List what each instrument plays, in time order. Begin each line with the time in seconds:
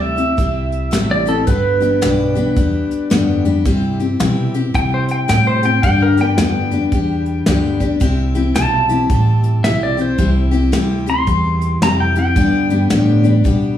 Already playing: upright bass D2, steel-string acoustic guitar C3 G3 C4 E4 G4
0.02 pedal steel guitar E5
0.16 steel-string acoustic guitar C4 E4 G4, closed hi-hat
0.37 upright bass C2, steel-string acoustic guitar G3 C4 E4 G4, kick, closed hi-hat
0.72 closed hi-hat
0.91 upright bass A1, steel-string acoustic guitar C3 G3 C4 E4 G4, snare, closed hi-hat
1.11 pedal steel guitar D5
1.26 steel-string acoustic guitar C4 E4 G4, pedal steel guitar A4, closed hi-hat
1.47 upright bass G1, steel-string acoustic guitar G2 D3 G3 B3 D4 G4, pedal steel guitar B4, kick, closed hi-hat
1.80 steel-string acoustic guitar G3 B3 D4 G4, closed hi-hat
2.01 upright bass B1, steel-string acoustic guitar G2 D3 G3 B3 D4 G4, snare, closed hi-hat
2.35 steel-string acoustic guitar G3 B3 D4 G4, closed hi-hat
2.56 upright bass E2, steel-string acoustic guitar G3 B3 D4 G4, kick, closed hi-hat
2.91 muted upright bass stroke, closed hi-hat
3.10 upright bass F2, steel-string acoustic guitar G2 D3 G3 B3 D4 G4, snare, closed hi-hat
3.45 steel-string acoustic guitar G3 B3 D4 G4, closed hi-hat
3.65 upright bass G2, steel-string acoustic guitar C3 G3 C4 E4 G4, kick, closed hi-hat
4.00 steel-string acoustic guitar C4 E4 G4, closed hi-hat
4.20 upright bass B2, steel-string acoustic guitar C3 G3 C4 E4 G4, snare, closed hi-hat
4.54 steel-string acoustic guitar C4 E4 G4, closed hi-hat
4.74 upright bass C3, steel-string acoustic guitar G3 C4 E4 G4, pedal steel guitar G5, kick, closed hi-hat
4.94 pedal steel guitar C5
5.08 pedal steel guitar G5, closed hi-hat
5.28 upright bass A2, steel-string acoustic guitar C3 G3 C4 E4 G4, pedal steel guitar G5, snare, closed hi-hat
5.47 pedal steel guitar C5
5.63 steel-string acoustic guitar C4 E4 G4, pedal steel guitar G5, closed hi-hat
5.83 upright bass G2, steel-string acoustic guitar G2 D3 G3 B3 D4 G4, pedal steel guitar G5, kick, closed hi-hat
6.02 pedal steel guitar A#4
6.17 steel-string acoustic guitar G3 B3 D4 G4, pedal steel guitar G5, closed hi-hat
6.38 upright bass F2, steel-string acoustic guitar G2 D3 G3 B3 D4 G4, pedal steel guitar G5, snare, closed hi-hat
6.71 steel-string acoustic guitar G3 B3 D4 G4, closed hi-hat
6.92 upright bass E2, steel-string acoustic guitar G3 B3 D4 G4, kick, closed hi-hat
7.26 closed hi-hat
7.46 upright bass D2, steel-string acoustic guitar G2 D3 G3 B3 D4 G4, snare, closed hi-hat
7.80 steel-string acoustic guitar G3 B3 D4 G4, kick, closed hi-hat
8.00 upright bass C2, steel-string acoustic guitar C3 G3 C4 E4 G4, kick, closed hi-hat
8.35 steel-string acoustic guitar C4 E4 G4, closed hi-hat
8.55 upright bass B1, steel-string acoustic guitar C3 G3 C4 E4 G4, pedal steel guitar A5, snare, closed hi-hat
8.89 steel-string acoustic guitar C4 E4 G4, closed hi-hat
9.10 upright bass A1, steel-string acoustic guitar G3 C4 E4 G4, kick, closed hi-hat
9.43 closed hi-hat
9.64 upright bass B1, steel-string acoustic guitar C3 G3 C4 E4 G4, pedal steel guitar E5, snare, closed hi-hat
9.83 pedal steel guitar D5
9.97 steel-string acoustic guitar C4 E4 G4, closed hi-hat
10.01 pedal steel guitar C5
10.18 upright bass C2, steel-string acoustic guitar C3 G3 C4 E4 G4, kick, closed hi-hat
10.51 steel-string acoustic guitar C4 E4 G4, closed hi-hat
10.72 upright bass D2, steel-string acoustic guitar C3 G3 C4 E4 G4, snare, closed hi-hat
11.06 steel-string acoustic guitar C4 E4 G4, pedal steel guitar C6, closed hi-hat
11.27 upright bass E2, steel-string acoustic guitar G3 C4 E4 G4, kick, closed hi-hat
11.61 closed hi-hat
11.82 upright bass F2, steel-string acoustic guitar C3 G3 C4 E4 G4, pedal steel guitar A#5, snare, closed hi-hat
12.00 pedal steel guitar G5
12.15 steel-string acoustic guitar C4 E4 G4, pedal steel guitar G5, closed hi-hat
12.36 steel-string acoustic guitar G2 D3 G3 B3 D4 G4, upright bass G2, kick, closed hi-hat
12.70 steel-string acoustic guitar G3 B3 D4 G4, closed hi-hat
12.90 steel-string acoustic guitar G2 D3 G3 B3 D4 G4, upright bass A2, snare, closed hi-hat
13.24 steel-string acoustic guitar G3 B3 D4 G4, closed hi-hat
13.44 upright bass B2, steel-string acoustic guitar G3 B3 D4 G4, kick, closed hi-hat